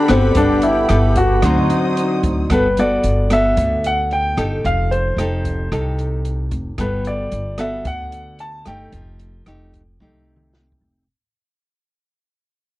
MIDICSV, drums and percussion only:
0, 0, Header, 1, 2, 480
1, 0, Start_track
1, 0, Key_signature, 1, "major"
1, 0, Tempo, 535236
1, 326, Time_signature, 4, 2, 24, 8
1, 11475, End_track
2, 0, Start_track
2, 0, Title_t, "Drums"
2, 77, Note_on_c, 9, 37, 55
2, 77, Note_on_c, 9, 42, 43
2, 167, Note_off_c, 9, 37, 0
2, 167, Note_off_c, 9, 42, 0
2, 314, Note_on_c, 9, 42, 57
2, 319, Note_on_c, 9, 36, 60
2, 404, Note_off_c, 9, 42, 0
2, 409, Note_off_c, 9, 36, 0
2, 554, Note_on_c, 9, 42, 41
2, 644, Note_off_c, 9, 42, 0
2, 796, Note_on_c, 9, 37, 58
2, 796, Note_on_c, 9, 42, 42
2, 886, Note_off_c, 9, 37, 0
2, 886, Note_off_c, 9, 42, 0
2, 1036, Note_on_c, 9, 42, 40
2, 1040, Note_on_c, 9, 36, 50
2, 1126, Note_off_c, 9, 42, 0
2, 1129, Note_off_c, 9, 36, 0
2, 1276, Note_on_c, 9, 37, 56
2, 1276, Note_on_c, 9, 42, 52
2, 1280, Note_on_c, 9, 36, 58
2, 1366, Note_off_c, 9, 37, 0
2, 1366, Note_off_c, 9, 42, 0
2, 1370, Note_off_c, 9, 36, 0
2, 1521, Note_on_c, 9, 42, 38
2, 1611, Note_off_c, 9, 42, 0
2, 1764, Note_on_c, 9, 42, 40
2, 1854, Note_off_c, 9, 42, 0
2, 2002, Note_on_c, 9, 42, 39
2, 2003, Note_on_c, 9, 36, 50
2, 2092, Note_off_c, 9, 42, 0
2, 2093, Note_off_c, 9, 36, 0
2, 2242, Note_on_c, 9, 37, 56
2, 2242, Note_on_c, 9, 42, 53
2, 2244, Note_on_c, 9, 36, 55
2, 2331, Note_off_c, 9, 37, 0
2, 2331, Note_off_c, 9, 42, 0
2, 2333, Note_off_c, 9, 36, 0
2, 2485, Note_on_c, 9, 42, 40
2, 2575, Note_off_c, 9, 42, 0
2, 2721, Note_on_c, 9, 42, 42
2, 2811, Note_off_c, 9, 42, 0
2, 2960, Note_on_c, 9, 37, 56
2, 2960, Note_on_c, 9, 42, 41
2, 3050, Note_off_c, 9, 37, 0
2, 3050, Note_off_c, 9, 42, 0
2, 3200, Note_on_c, 9, 42, 55
2, 3205, Note_on_c, 9, 36, 55
2, 3290, Note_off_c, 9, 42, 0
2, 3294, Note_off_c, 9, 36, 0
2, 3445, Note_on_c, 9, 42, 42
2, 3534, Note_off_c, 9, 42, 0
2, 3685, Note_on_c, 9, 42, 40
2, 3775, Note_off_c, 9, 42, 0
2, 3924, Note_on_c, 9, 37, 53
2, 3924, Note_on_c, 9, 42, 40
2, 4013, Note_off_c, 9, 37, 0
2, 4013, Note_off_c, 9, 42, 0
2, 4166, Note_on_c, 9, 36, 51
2, 4169, Note_on_c, 9, 42, 53
2, 4256, Note_off_c, 9, 36, 0
2, 4259, Note_off_c, 9, 42, 0
2, 4411, Note_on_c, 9, 42, 39
2, 4500, Note_off_c, 9, 42, 0
2, 4646, Note_on_c, 9, 37, 56
2, 4646, Note_on_c, 9, 42, 39
2, 4736, Note_off_c, 9, 37, 0
2, 4736, Note_off_c, 9, 42, 0
2, 4885, Note_on_c, 9, 36, 48
2, 4886, Note_on_c, 9, 42, 35
2, 4974, Note_off_c, 9, 36, 0
2, 4975, Note_off_c, 9, 42, 0
2, 5125, Note_on_c, 9, 36, 52
2, 5128, Note_on_c, 9, 37, 55
2, 5128, Note_on_c, 9, 42, 49
2, 5215, Note_off_c, 9, 36, 0
2, 5218, Note_off_c, 9, 37, 0
2, 5218, Note_off_c, 9, 42, 0
2, 5367, Note_on_c, 9, 42, 33
2, 5457, Note_off_c, 9, 42, 0
2, 5602, Note_on_c, 9, 42, 35
2, 5692, Note_off_c, 9, 42, 0
2, 5840, Note_on_c, 9, 42, 36
2, 5841, Note_on_c, 9, 36, 44
2, 5929, Note_off_c, 9, 42, 0
2, 5931, Note_off_c, 9, 36, 0
2, 6079, Note_on_c, 9, 36, 51
2, 6079, Note_on_c, 9, 37, 53
2, 6079, Note_on_c, 9, 42, 49
2, 6168, Note_off_c, 9, 37, 0
2, 6168, Note_off_c, 9, 42, 0
2, 6169, Note_off_c, 9, 36, 0
2, 6317, Note_on_c, 9, 42, 36
2, 6407, Note_off_c, 9, 42, 0
2, 6559, Note_on_c, 9, 42, 38
2, 6649, Note_off_c, 9, 42, 0
2, 6795, Note_on_c, 9, 37, 50
2, 6795, Note_on_c, 9, 42, 39
2, 6885, Note_off_c, 9, 37, 0
2, 6885, Note_off_c, 9, 42, 0
2, 7040, Note_on_c, 9, 42, 51
2, 7041, Note_on_c, 9, 36, 51
2, 7130, Note_off_c, 9, 42, 0
2, 7131, Note_off_c, 9, 36, 0
2, 7283, Note_on_c, 9, 42, 38
2, 7373, Note_off_c, 9, 42, 0
2, 7523, Note_on_c, 9, 42, 35
2, 7613, Note_off_c, 9, 42, 0
2, 7763, Note_on_c, 9, 37, 50
2, 7763, Note_on_c, 9, 42, 40
2, 7853, Note_off_c, 9, 37, 0
2, 7853, Note_off_c, 9, 42, 0
2, 8005, Note_on_c, 9, 42, 49
2, 8007, Note_on_c, 9, 36, 51
2, 8095, Note_off_c, 9, 42, 0
2, 8096, Note_off_c, 9, 36, 0
2, 8247, Note_on_c, 9, 42, 36
2, 8337, Note_off_c, 9, 42, 0
2, 8487, Note_on_c, 9, 37, 53
2, 8487, Note_on_c, 9, 42, 39
2, 8577, Note_off_c, 9, 37, 0
2, 8577, Note_off_c, 9, 42, 0
2, 8731, Note_on_c, 9, 36, 43
2, 8732, Note_on_c, 9, 42, 38
2, 8821, Note_off_c, 9, 36, 0
2, 8822, Note_off_c, 9, 42, 0
2, 8968, Note_on_c, 9, 48, 36
2, 8971, Note_on_c, 9, 36, 52
2, 9058, Note_off_c, 9, 48, 0
2, 9061, Note_off_c, 9, 36, 0
2, 9293, Note_on_c, 9, 47, 42
2, 9383, Note_off_c, 9, 47, 0
2, 9446, Note_on_c, 9, 38, 39
2, 9536, Note_off_c, 9, 38, 0
2, 9613, Note_on_c, 9, 36, 50
2, 9703, Note_off_c, 9, 36, 0
2, 11475, End_track
0, 0, End_of_file